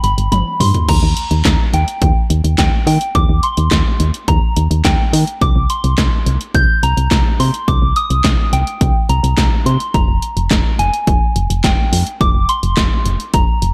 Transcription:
0.04 0.15 G1 loud
0.04 0.31 B5 loud
0.04 closed hi-hat medium
0.18 0.29 G1 loud
0.18 closed hi-hat medium
0.32 0.43 G1 loud
0.32 0.61 B5 loud
0.32 closed hi-hat medium
0.32 high tom medium
0.60 0.72 G2 loud
0.60 0.87 C6 loud
0.60 mid tom loud
0.60 open hi-hat medium
0.74 closed hi-hat medium
0.74 floor tom medium
0.89 1.00 D#2 loud
0.89 1.76 A#5 loud
0.89 kick loud
0.89 closed hi-hat medium
0.89 crash loud
1.03 1.14 D#2 loud
1.17 closed hi-hat medium
1.31 1.42 D#2 loud
1.31 closed hi-hat medium
1.45 1.57 D#2 loud
1.45 kick loud
1.45 snare loud
1.45 clap loud
1.45 closed hi-hat medium
1.74 1.85 D#2 loud
1.74 2.26 G5 medium
1.74 closed hi-hat medium
1.88 closed hi-hat medium
2.02 2.13 D#2 loud
2.02 kick loud
2.02 closed hi-hat medium
2.30 2.42 D#2 loud
2.30 closed hi-hat medium
2.44 2.56 D#2 medium
2.44 closed hi-hat medium
2.58 2.70 D#2 loud
2.58 2.86 G5 medium
2.58 kick loud
2.58 snare loud
2.58 clap medium
2.58 closed hi-hat medium
2.87 2.98 D#3 loud
2.87 3.16 G5 medium
2.87 open hi-hat medium
3.01 closed hi-hat medium
3.15 3.26 D#2 loud
3.15 3.41 D6 loud
3.15 kick loud
3.15 closed hi-hat medium
3.29 3.41 D#2 loud
3.43 3.96 C6 loud
3.43 closed hi-hat medium
3.57 3.69 D#2 loud
3.57 closed hi-hat medium
3.71 3.83 D#2 loud
3.71 kick loud
3.71 snare loud
3.71 clap medium
3.71 closed hi-hat medium
4.00 4.11 D#2 loud
4.00 closed hi-hat medium
4.14 closed hi-hat medium
4.28 4.40 D#2 loud
4.28 4.81 A#5 medium
4.28 kick loud
4.28 closed hi-hat medium
4.56 4.68 D#2 loud
4.56 closed hi-hat medium
4.71 4.82 D#2 loud
4.71 closed hi-hat medium
4.85 4.96 D#2 loud
4.85 5.37 G5 medium
4.85 kick loud
4.85 snare loud
4.85 clap medium
4.85 closed hi-hat medium
5.13 5.25 D#3 loud
5.13 open hi-hat medium
5.27 closed hi-hat medium
5.41 5.53 C2 loud
5.41 5.68 D6 loud
5.41 kick loud
5.41 closed hi-hat medium
5.56 5.67 C2 loud
5.70 6.23 C6 loud
5.70 closed hi-hat medium
5.84 5.95 C2 loud
5.84 closed hi-hat medium
5.98 6.09 C2 loud
5.98 kick loud
5.98 snare loud
5.98 clap loud
5.98 closed hi-hat medium
6.26 6.38 C2 loud
6.26 closed hi-hat medium
6.41 closed hi-hat medium
6.54 6.66 C2 loud
6.54 6.84 G6 loud
6.54 kick loud
6.54 closed hi-hat medium
6.83 6.94 C2 loud
6.83 7.41 A#5 loud
6.83 closed hi-hat medium
6.97 7.09 C2 loud
6.97 closed hi-hat medium
7.11 7.23 C2 loud
7.11 kick loud
7.11 snare loud
7.11 clap medium
7.11 closed hi-hat medium
7.40 7.51 C3 loud
7.40 7.69 C6 loud
7.40 open hi-hat medium
7.54 closed hi-hat medium
7.68 7.79 C2 loud
7.68 7.94 D6 loud
7.68 kick loud
7.68 closed hi-hat medium
7.82 7.94 C2 loud
7.96 8.55 D#6 loud
7.96 closed hi-hat medium
8.10 8.22 C2 medium
8.10 closed hi-hat medium
8.24 8.36 C2 loud
8.24 kick loud
8.24 snare loud
8.24 clap medium
8.24 closed hi-hat medium
8.53 8.64 C2 loud
8.53 9.11 G5 medium
8.53 closed hi-hat medium
8.67 closed hi-hat medium
8.81 8.93 C2 loud
8.81 kick loud
8.81 closed hi-hat medium
9.09 9.21 C2 loud
9.09 9.68 A#5 medium
9.09 closed hi-hat medium
9.23 9.35 C2 loud
9.23 closed hi-hat medium
9.38 9.49 C2 loud
9.38 kick loud
9.38 snare loud
9.38 clap medium
9.38 closed hi-hat medium
9.66 9.77 C3 loud
9.66 9.95 C6 medium
9.66 closed hi-hat medium
9.80 closed hi-hat medium
9.94 10.06 F1 loud
9.94 10.75 A#5 loud
9.94 kick loud
9.94 closed hi-hat medium
10.08 10.20 F1 loud
10.22 closed hi-hat medium
10.37 10.48 F1 loud
10.37 closed hi-hat medium
10.51 10.62 F1 loud
10.51 kick loud
10.51 snare loud
10.51 clap medium
10.51 closed hi-hat medium
10.79 10.91 F1 loud
10.79 11.32 G#5 medium
10.79 closed hi-hat medium
10.94 closed hi-hat medium
11.07 11.19 F1 loud
11.07 kick loud
11.07 closed hi-hat medium
11.36 11.47 F1 loud
11.36 closed hi-hat medium
11.50 11.61 F1 loud
11.50 closed hi-hat medium
11.64 11.75 F1 loud
11.64 12.17 G5 medium
11.64 kick loud
11.64 snare loud
11.64 clap medium
11.64 closed hi-hat medium
11.92 12.04 F2 loud
11.92 open hi-hat medium
12.07 closed hi-hat medium
12.21 12.32 F1 loud
12.21 12.50 D6 loud
12.21 kick loud
12.21 closed hi-hat medium
12.35 12.46 F1 loud
12.49 13.02 C6 loud
12.49 closed hi-hat medium
12.63 12.75 F1 loud
12.63 closed hi-hat medium
12.77 12.89 F1 loud
12.77 kick loud
12.77 snare loud
12.77 clap medium
12.77 closed hi-hat medium
13.06 13.17 F1 loud
13.06 closed hi-hat medium
13.20 closed hi-hat medium
13.34 13.45 F1 loud
13.34 13.74 A#5 medium
13.34 kick loud
13.34 closed hi-hat medium
13.62 13.74 F1 loud
13.62 closed hi-hat medium

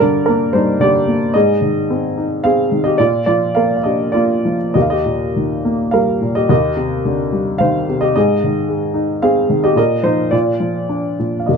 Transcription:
0.00 0.52 G2 medium
0.00 0.78 D3 soft
0.00 0.26 D4 medium
0.00 0.83 G4 medium
0.00 0.24 A#4 medium
0.00 0.81 D5 medium
0.26 1.06 A#3 soft
0.26 0.52 D4 medium
0.26 0.54 A#4 medium
0.53 1.32 G2 soft
0.53 0.79 D#4 soft
0.53 0.81 C5 medium
0.80 1.32 D3 medium
0.80 1.19 G4 medium
0.80 1.18 D5 medium
1.08 1.34 A#3 soft
1.34 2.95 G#2 medium
1.34 2.41 G#4 medium
1.34 2.47 D#5 medium
1.62 2.68 D#3 soft
1.90 2.43 C4 soft
2.18 2.97 D#4 soft
2.44 2.98 C4 soft
2.44 2.83 G#4 medium
2.44 2.82 F5 medium
2.72 2.99 D#3 soft
2.84 2.99 G4 medium
2.84 2.99 D#5 medium
2.98 4.72 A#2 medium
2.98 3.26 F4 medium
2.98 3.25 D5 medium
3.26 4.41 F3 soft
3.26 3.55 F4 medium
3.26 3.56 D5 medium
3.55 4.14 A#3 soft
3.55 3.77 A#4 medium
3.55 3.75 F5 medium
3.76 3.84 F5 soft
3.83 4.73 D4 soft
3.83 4.13 G4 soft
3.83 4.15 D#5 medium
4.12 4.74 A#3 soft
4.12 4.56 F4 medium
4.12 4.55 D5 medium
4.45 4.75 F3 soft
4.74 6.46 D#2 medium
4.74 4.83 G4 soft
4.74 4.82 D#5 medium
4.82 4.90 F5 medium
4.90 5.90 G4 medium
4.90 5.97 D#5 medium
5.06 6.18 A#2 soft
5.36 6.47 D#3 soft
5.65 6.48 A#3 soft
5.91 6.48 G3 soft
5.91 6.33 A#4 medium
5.91 6.36 F5 medium
6.21 6.49 A#2 soft
6.35 6.50 G4 medium
6.35 6.49 D#5 medium
6.49 8.11 D#2 medium
6.49 7.57 G4 medium
6.49 7.64 D#5 medium
6.77 7.85 C3 soft
7.05 8.12 D3 soft
7.32 8.13 G3 soft
7.58 8.14 D#3 medium
7.58 7.99 C5 medium
7.58 8.03 F5 medium
7.89 8.15 C3 soft
8.01 8.15 G4 medium
8.01 8.14 D#5 medium
8.16 9.73 G#2 medium
8.16 9.19 G#4 medium
8.16 9.26 D#5 medium
8.44 9.48 D#3 soft
8.69 9.74 G#3 soft
8.94 9.74 D#4 soft
9.22 9.75 C4 medium
9.22 9.61 G#4 medium
9.22 9.65 F5 medium
9.50 9.76 D#3 soft
9.64 9.77 G4 medium
9.64 9.76 D#5 medium
9.76 10.30 A#2 medium
9.76 10.03 A#4 medium
9.76 10.05 D#5 medium
10.03 10.31 F3 soft
10.03 10.31 D#4 medium
10.03 10.33 C5 medium
10.31 11.18 A#2 medium
10.31 11.16 F4 soft
10.31 11.15 D5 medium
10.60 11.46 F3 soft
10.89 11.47 D4 soft
11.19 11.48 A#2 soft
11.39 11.48 F5 soft
11.46 11.57 D#2 soft
11.46 11.57 G4 soft
11.46 11.57 D#5 soft

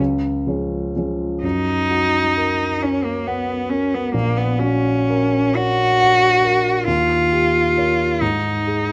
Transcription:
0.00 0.45 C#2 soft
0.47 0.92 F3 soft
0.47 0.92 G#3 soft
0.47 0.92 C#4 soft
0.96 1.40 F3 soft
0.96 1.40 G#3 soft
0.96 1.40 C#4 soft
1.43 4.10 F#2 soft
1.43 2.84 D#4 medium
1.91 2.63 F#4 soft
2.37 3.09 A#4 soft
2.82 3.06 C#4 medium
2.82 3.53 C#5 soft
3.04 3.28 A#3 medium
3.27 3.71 B3 medium
3.27 3.97 F#5 soft
3.69 3.96 C#4 medium
3.69 4.14 A#4 soft
3.94 4.14 B3 medium
4.14 6.83 A#1 soft
4.14 4.39 A#3 medium
4.37 4.61 B3 medium
4.59 5.57 C#4 medium
4.59 5.37 F#4 soft
5.10 5.84 A#4 soft
5.55 6.86 F#4 medium
5.55 6.26 C#5 soft
6.01 6.69 F#5 soft
6.44 6.87 A#4 soft
6.87 8.17 D#2 soft
6.87 8.22 F4 medium
7.32 8.03 G4 soft
7.77 8.18 A#4 soft
7.77 8.18 C#5 soft
8.21 8.92 G#2 soft
8.21 8.92 D#4 medium
8.66 8.92 G#4 soft

